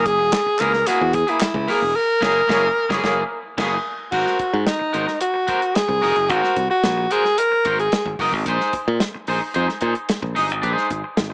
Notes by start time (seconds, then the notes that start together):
Already playing: F#1
0.05 G#4, kick, closed hi-hat
0.19 E1, muted clean electric guitar stroke
0.32 muted clean electric guitar stroke, snare, clap, closed hi-hat
0.46 muted fingered electric bass stroke, muted clean electric guitar stroke
0.59 C#2 A#3 E4 G#4 A#4, clap, closed hi-hat
0.73 muted clean electric guitar stroke, snare
0.87 A#3 E4 F#4 G#4, muted fingered electric bass stroke, closed hi-hat
1.01 E2
1.13 G#4, muted clean electric guitar stroke, kick, closed hi-hat
1.27 A#3 E4 G#4, closed hi-hat
1.40 muted fingered electric bass stroke, snare, clap, closed hi-hat
1.54 C#2, muted clean electric guitar stroke, kick
1.68 A#3 E4 G#4 A#4, snare, open hi-hat
1.81 E1, muted clean electric guitar stroke
1.96 A#4
2.21 F#1 A#3 E4 G#4 C#5, kick, snare, crash
2.47 F#1 A#3 E4 G#4 C#5, kick, snare
2.89 F#1 A#3 E4 G#4 C#5, kick, snare
3.04 F#1 A#3 E4 G#4 C#5, kick, snare
3.58 F#1 A#3 E4 G#4 C#5, kick, snare, crash
4.12 G#1 F#4 A#4 C5, kick, crash
4.27 snare
4.39 muted fingered electric bass stroke, kick, closed hi-hat
4.53 G#2, muted clean electric guitar stroke
4.67 D#4, muted clean electric guitar stroke, snare, closed hi-hat
4.79 muted clean electric guitar stroke, muted fingered electric bass stroke
4.93 G#1 F#4 A#4 C5, closed hi-hat
5.07 muted clean electric guitar stroke, snare
5.20 F#4, muted clean electric guitar stroke, closed hi-hat
5.34 muted clean electric guitar stroke
5.47 F#4 A#4 C5, kick, closed hi-hat
5.62 muted clean electric guitar stroke, closed hi-hat
5.75 G#4, snare, closed hi-hat
5.88 C2, muted clean electric guitar stroke, kick
6.02 F1 F#4 A#4 D#5, snare, open hi-hat
6.16 F#1, muted clean electric guitar stroke, closed hi-hat
6.29 G#1 F#4 A#4 C5, kick, closed hi-hat
6.44 snare
6.56 C2, kick, closed hi-hat
6.70 F#4, muted clean electric guitar stroke
6.83 A#1, muted clean electric guitar stroke, snare, closed hi-hat
6.97 muted clean electric guitar stroke
7.10 F#4 G#4 A#4 C5, closed hi-hat
7.25 muted clean electric guitar stroke, snare
7.38 A#4, muted clean electric guitar stroke, closed hi-hat
7.52 muted clean electric guitar stroke
7.65 G#1 F#4 A#4 C5, kick, closed hi-hat
7.79 G#4, muted clean electric guitar stroke, closed hi-hat
7.92 snare, closed hi-hat
8.06 G#1, muted clean electric guitar stroke, kick
8.19 F#1 F#4 A#4 D#5, kick, snare, open hi-hat
8.33 G#1, muted clean electric guitar stroke, kick
8.46 A#1 D#4 G#4 C5, kick, closed hi-hat
8.60 snare
8.73 muted fingered electric bass stroke, kick, closed hi-hat
8.88 A#2, muted clean electric guitar stroke
9.00 muted clean electric guitar stroke, snare, closed hi-hat
9.14 muted clean electric guitar stroke, muted fingered electric bass stroke
9.27 A#1 D#4 G#4 C5, open hi-hat
9.40 muted clean electric guitar stroke
9.54 F2 D#4 G#4 C5, closed hi-hat
9.69 muted clean electric guitar stroke, snare
9.81 A#2 D#4 G#4 C5, kick, closed hi-hat
9.95 muted clean electric guitar stroke, closed hi-hat
10.09 snare, closed hi-hat
10.22 A#1, muted clean electric guitar stroke, kick
10.35 G1 D#4 G#4 D#5, snare, open hi-hat
10.48 G#1, muted clean electric guitar stroke, closed hi-hat
10.62 A#1 D4 G4 B4, kick, closed hi-hat
10.73 D#4 G#4 C5
10.77 snare
10.90 G#1, kick, closed hi-hat
11.04 muted clean electric guitar stroke
11.17 G#1, muted clean electric guitar stroke, snare, closed hi-hat
11.30 muted clean electric guitar stroke